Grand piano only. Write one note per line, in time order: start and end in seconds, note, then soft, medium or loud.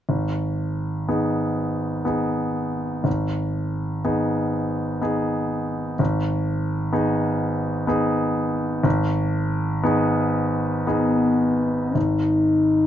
0.09 1.06 G#1 soft
1.09 2.02 B3 soft
1.09 2.02 D#4 soft
1.09 2.02 G#4 soft
2.05 3.01 B3 soft
2.05 3.02 D#4 soft
2.05 3.02 G#4 soft
3.04 4.01 G#1 soft
4.05 4.98 B3 soft
4.05 4.99 D#4 soft
4.05 4.99 G#4 soft
5.01 5.95 B3 soft
5.01 5.95 D#4 soft
5.01 5.95 G#4 soft
5.99 6.92 G#1 soft
6.93 7.84 B3 soft
6.93 7.85 D#4 soft
6.93 7.85 G#4 soft
7.87 8.80 B3 soft
7.87 8.80 D#4 soft
7.87 8.80 G#4 soft
8.83 9.80 G#1 soft
9.83 10.83 B3 soft
9.83 10.84 D#4 soft
9.83 10.84 G#4 soft
10.87 11.91 B3 soft
10.87 11.91 D#4 soft
10.87 11.91 G#4 soft
11.95 12.87 G#1 soft